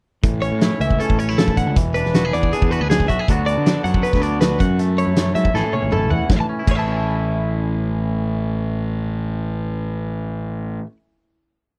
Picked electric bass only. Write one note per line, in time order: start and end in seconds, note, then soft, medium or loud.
0.24 0.50 A1 medium
0.52 0.69 A2 medium
0.80 0.98 C#2 medium
1.10 1.36 A1 medium
1.38 1.67 A1 medium
1.67 1.75 C#2 medium
1.76 2.02 E1 medium
2.05 2.31 E1 medium
2.34 2.51 E2 medium
2.62 2.79 E2 medium
2.81 3.09 D2 medium
3.09 3.18 B1 medium
3.29 3.54 D2 medium
3.57 3.74 D3 medium
3.84 4.02 F#2 medium
4.14 4.39 D2 medium
4.42 4.59 D2 medium
4.60 5.04 F#2 medium
5.07 5.33 F#2 medium
5.35 5.44 F#3 medium
5.54 5.64 A1 medium
5.64 5.81 A2 medium
5.83 6.11 G#1 medium
6.11 6.20 E2 medium
6.30 6.40 A1 medium
6.67 10.78 A1 medium